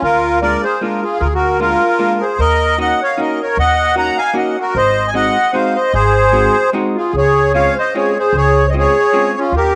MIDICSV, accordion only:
0, 0, Header, 1, 2, 480
1, 0, Start_track
1, 0, Key_signature, -5, "major"
1, 0, Tempo, 393443
1, 33, Time_signature, 3, 2, 24, 8
1, 6274, Tempo, 398142
1, 11830, End_track
2, 0, Start_track
2, 0, Title_t, "Accordion"
2, 0, Program_c, 0, 21
2, 29, Note_on_c, 0, 65, 81
2, 45, Note_on_c, 0, 70, 115
2, 472, Note_off_c, 0, 65, 0
2, 491, Note_off_c, 0, 70, 0
2, 510, Note_on_c, 0, 70, 82
2, 514, Note_on_c, 0, 74, 113
2, 753, Note_off_c, 0, 70, 0
2, 772, Note_on_c, 0, 68, 71
2, 779, Note_on_c, 0, 72, 98
2, 782, Note_off_c, 0, 74, 0
2, 973, Note_off_c, 0, 68, 0
2, 998, Note_off_c, 0, 72, 0
2, 1000, Note_on_c, 0, 65, 54
2, 1005, Note_on_c, 0, 70, 71
2, 1230, Note_off_c, 0, 65, 0
2, 1248, Note_on_c, 0, 65, 66
2, 1268, Note_off_c, 0, 70, 0
2, 1268, Note_on_c, 0, 68, 73
2, 1441, Note_off_c, 0, 65, 0
2, 1459, Note_on_c, 0, 65, 93
2, 1465, Note_on_c, 0, 70, 115
2, 1482, Note_off_c, 0, 68, 0
2, 1517, Note_on_c, 0, 68, 80
2, 1549, Note_off_c, 0, 65, 0
2, 1561, Note_off_c, 0, 70, 0
2, 1631, Note_off_c, 0, 68, 0
2, 1637, Note_on_c, 0, 66, 71
2, 1649, Note_on_c, 0, 70, 92
2, 1923, Note_off_c, 0, 66, 0
2, 1953, Note_off_c, 0, 70, 0
2, 1954, Note_on_c, 0, 65, 85
2, 1971, Note_on_c, 0, 70, 104
2, 2658, Note_off_c, 0, 65, 0
2, 2686, Note_on_c, 0, 68, 66
2, 2706, Note_on_c, 0, 72, 75
2, 2738, Note_off_c, 0, 70, 0
2, 2898, Note_off_c, 0, 68, 0
2, 2925, Note_on_c, 0, 70, 83
2, 2931, Note_off_c, 0, 72, 0
2, 2934, Note_on_c, 0, 75, 123
2, 3375, Note_off_c, 0, 70, 0
2, 3400, Note_off_c, 0, 75, 0
2, 3418, Note_on_c, 0, 75, 82
2, 3437, Note_on_c, 0, 78, 101
2, 3660, Note_off_c, 0, 75, 0
2, 3693, Note_on_c, 0, 73, 73
2, 3695, Note_off_c, 0, 78, 0
2, 3704, Note_on_c, 0, 77, 96
2, 3886, Note_off_c, 0, 73, 0
2, 3901, Note_on_c, 0, 70, 62
2, 3912, Note_off_c, 0, 77, 0
2, 3916, Note_on_c, 0, 75, 72
2, 4140, Note_off_c, 0, 70, 0
2, 4165, Note_on_c, 0, 70, 66
2, 4173, Note_off_c, 0, 75, 0
2, 4183, Note_on_c, 0, 73, 85
2, 4359, Note_off_c, 0, 70, 0
2, 4369, Note_off_c, 0, 73, 0
2, 4382, Note_on_c, 0, 75, 90
2, 4392, Note_on_c, 0, 78, 127
2, 4818, Note_off_c, 0, 75, 0
2, 4824, Note_off_c, 0, 78, 0
2, 4842, Note_on_c, 0, 78, 90
2, 4865, Note_on_c, 0, 82, 118
2, 5086, Note_off_c, 0, 78, 0
2, 5095, Note_on_c, 0, 77, 77
2, 5108, Note_on_c, 0, 80, 107
2, 5123, Note_off_c, 0, 82, 0
2, 5298, Note_off_c, 0, 77, 0
2, 5327, Note_off_c, 0, 80, 0
2, 5327, Note_on_c, 0, 75, 64
2, 5345, Note_on_c, 0, 78, 67
2, 5566, Note_off_c, 0, 75, 0
2, 5599, Note_on_c, 0, 66, 65
2, 5600, Note_off_c, 0, 78, 0
2, 5627, Note_on_c, 0, 70, 90
2, 5789, Note_off_c, 0, 66, 0
2, 5811, Note_on_c, 0, 72, 85
2, 5823, Note_off_c, 0, 70, 0
2, 5828, Note_on_c, 0, 75, 106
2, 6179, Note_off_c, 0, 72, 0
2, 6197, Note_on_c, 0, 80, 89
2, 6226, Note_off_c, 0, 75, 0
2, 6273, Note_off_c, 0, 80, 0
2, 6276, Note_on_c, 0, 75, 79
2, 6299, Note_on_c, 0, 78, 112
2, 6720, Note_off_c, 0, 75, 0
2, 6745, Note_on_c, 0, 72, 66
2, 6776, Note_on_c, 0, 77, 83
2, 6779, Note_off_c, 0, 78, 0
2, 6993, Note_off_c, 0, 72, 0
2, 7016, Note_on_c, 0, 72, 75
2, 7021, Note_on_c, 0, 75, 85
2, 7034, Note_off_c, 0, 77, 0
2, 7216, Note_off_c, 0, 72, 0
2, 7229, Note_on_c, 0, 68, 79
2, 7240, Note_off_c, 0, 75, 0
2, 7241, Note_on_c, 0, 72, 117
2, 8147, Note_off_c, 0, 68, 0
2, 8153, Note_off_c, 0, 72, 0
2, 8476, Note_on_c, 0, 65, 65
2, 8489, Note_on_c, 0, 68, 69
2, 8673, Note_off_c, 0, 65, 0
2, 8698, Note_off_c, 0, 68, 0
2, 8716, Note_on_c, 0, 68, 90
2, 8726, Note_on_c, 0, 73, 104
2, 9141, Note_off_c, 0, 73, 0
2, 9150, Note_off_c, 0, 68, 0
2, 9160, Note_on_c, 0, 73, 87
2, 9184, Note_on_c, 0, 77, 104
2, 9408, Note_off_c, 0, 73, 0
2, 9447, Note_off_c, 0, 77, 0
2, 9451, Note_on_c, 0, 72, 83
2, 9477, Note_on_c, 0, 75, 101
2, 9643, Note_off_c, 0, 72, 0
2, 9673, Note_on_c, 0, 68, 61
2, 9676, Note_off_c, 0, 75, 0
2, 9684, Note_on_c, 0, 73, 78
2, 9906, Note_off_c, 0, 68, 0
2, 9936, Note_off_c, 0, 73, 0
2, 9938, Note_on_c, 0, 68, 72
2, 9953, Note_on_c, 0, 72, 91
2, 10127, Note_off_c, 0, 68, 0
2, 10151, Note_on_c, 0, 68, 78
2, 10154, Note_off_c, 0, 72, 0
2, 10172, Note_on_c, 0, 73, 107
2, 10516, Note_off_c, 0, 68, 0
2, 10563, Note_on_c, 0, 75, 81
2, 10565, Note_off_c, 0, 73, 0
2, 10622, Note_off_c, 0, 75, 0
2, 10662, Note_on_c, 0, 68, 83
2, 10682, Note_on_c, 0, 73, 108
2, 11323, Note_off_c, 0, 68, 0
2, 11385, Note_on_c, 0, 61, 56
2, 11398, Note_on_c, 0, 65, 90
2, 11402, Note_off_c, 0, 73, 0
2, 11564, Note_off_c, 0, 61, 0
2, 11589, Note_off_c, 0, 65, 0
2, 11591, Note_on_c, 0, 67, 87
2, 11619, Note_on_c, 0, 70, 102
2, 11830, Note_off_c, 0, 67, 0
2, 11830, Note_off_c, 0, 70, 0
2, 11830, End_track
0, 0, End_of_file